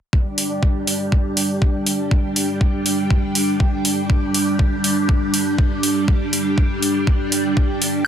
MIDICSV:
0, 0, Header, 1, 3, 480
1, 0, Start_track
1, 0, Tempo, 495868
1, 126, Time_signature, 4, 2, 24, 8
1, 7814, End_track
2, 0, Start_track
2, 0, Title_t, "String machine"
2, 0, Program_c, 0, 50
2, 125, Note_on_c, 0, 55, 81
2, 125, Note_on_c, 0, 62, 72
2, 125, Note_on_c, 0, 67, 84
2, 7791, Note_off_c, 0, 67, 0
2, 7814, Note_off_c, 0, 55, 0
2, 7814, Note_off_c, 0, 62, 0
2, 7814, End_track
3, 0, Start_track
3, 0, Title_t, "Drums"
3, 126, Note_on_c, 9, 36, 101
3, 223, Note_off_c, 9, 36, 0
3, 366, Note_on_c, 9, 46, 89
3, 463, Note_off_c, 9, 46, 0
3, 606, Note_on_c, 9, 36, 96
3, 703, Note_off_c, 9, 36, 0
3, 846, Note_on_c, 9, 46, 74
3, 943, Note_off_c, 9, 46, 0
3, 1086, Note_on_c, 9, 36, 98
3, 1183, Note_off_c, 9, 36, 0
3, 1325, Note_on_c, 9, 46, 93
3, 1422, Note_off_c, 9, 46, 0
3, 1566, Note_on_c, 9, 36, 106
3, 1663, Note_off_c, 9, 36, 0
3, 1805, Note_on_c, 9, 46, 86
3, 1902, Note_off_c, 9, 46, 0
3, 2046, Note_on_c, 9, 36, 110
3, 2143, Note_off_c, 9, 36, 0
3, 2286, Note_on_c, 9, 46, 92
3, 2383, Note_off_c, 9, 46, 0
3, 2526, Note_on_c, 9, 36, 101
3, 2622, Note_off_c, 9, 36, 0
3, 2766, Note_on_c, 9, 46, 78
3, 2863, Note_off_c, 9, 46, 0
3, 3006, Note_on_c, 9, 36, 102
3, 3102, Note_off_c, 9, 36, 0
3, 3245, Note_on_c, 9, 46, 96
3, 3342, Note_off_c, 9, 46, 0
3, 3486, Note_on_c, 9, 36, 111
3, 3583, Note_off_c, 9, 36, 0
3, 3726, Note_on_c, 9, 46, 89
3, 3823, Note_off_c, 9, 46, 0
3, 3966, Note_on_c, 9, 36, 112
3, 4063, Note_off_c, 9, 36, 0
3, 4206, Note_on_c, 9, 46, 96
3, 4302, Note_off_c, 9, 46, 0
3, 4446, Note_on_c, 9, 36, 111
3, 4543, Note_off_c, 9, 36, 0
3, 4686, Note_on_c, 9, 46, 86
3, 4783, Note_off_c, 9, 46, 0
3, 4926, Note_on_c, 9, 36, 110
3, 5023, Note_off_c, 9, 36, 0
3, 5166, Note_on_c, 9, 46, 96
3, 5263, Note_off_c, 9, 46, 0
3, 5406, Note_on_c, 9, 36, 114
3, 5503, Note_off_c, 9, 36, 0
3, 5646, Note_on_c, 9, 46, 87
3, 5743, Note_off_c, 9, 46, 0
3, 5886, Note_on_c, 9, 36, 107
3, 5983, Note_off_c, 9, 36, 0
3, 6126, Note_on_c, 9, 46, 96
3, 6223, Note_off_c, 9, 46, 0
3, 6366, Note_on_c, 9, 36, 105
3, 6463, Note_off_c, 9, 36, 0
3, 6607, Note_on_c, 9, 46, 83
3, 6703, Note_off_c, 9, 46, 0
3, 6846, Note_on_c, 9, 36, 109
3, 6943, Note_off_c, 9, 36, 0
3, 7086, Note_on_c, 9, 46, 99
3, 7183, Note_off_c, 9, 46, 0
3, 7326, Note_on_c, 9, 36, 110
3, 7423, Note_off_c, 9, 36, 0
3, 7566, Note_on_c, 9, 46, 88
3, 7663, Note_off_c, 9, 46, 0
3, 7814, End_track
0, 0, End_of_file